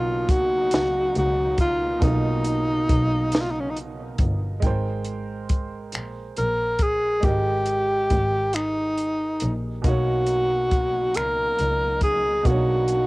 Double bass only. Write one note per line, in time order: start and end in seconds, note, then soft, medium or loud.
0.00 0.68 B1 loud
0.74 0.89 C#2 soft
1.17 1.99 C#2 medium
2.03 2.85 B1 loud
2.90 4.16 B1 medium
4.20 4.59 G1 medium
4.63 5.90 G#1 medium
5.95 6.10 A#1 soft
6.38 7.21 A#1 medium
7.24 8.07 G#1 medium
8.11 9.38 G#1 medium
9.43 9.81 A#1 medium
9.85 11.11 B1 loud
11.16 11.32 C#2 soft
11.60 12.42 C#2 medium
12.46 13.07 B1 loud